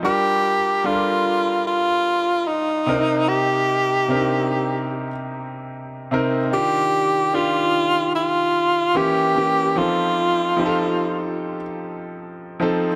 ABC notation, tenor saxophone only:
X:1
M:4/4
L:1/8
Q:"Swing 16ths" 1/4=74
K:Gm
V:1 name="Tenor saxophone"
G2 F2 F2 E2 | G4 z4 | G2 F2 F2 G2 | F4 z4 |]